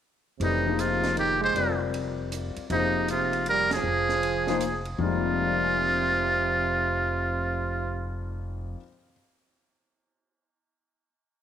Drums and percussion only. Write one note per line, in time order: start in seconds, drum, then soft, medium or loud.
0.41 ride medium
0.79 hi-hat pedal soft
0.79 ride medium
1.03 snare soft
1.03 ride soft
1.17 ride medium
1.56 ride medium
1.94 ride medium
2.32 hi-hat pedal medium
2.32 ride medium
2.56 ride soft
2.70 ride soft
3.08 hi-hat pedal medium
3.08 ride medium
3.33 ride soft
3.46 ride medium
3.71 snare medium
3.71 ride medium
4.09 snare soft
4.23 ride soft
4.47 snare soft
4.60 hi-hat pedal medium
4.60 ride medium
4.85 ride soft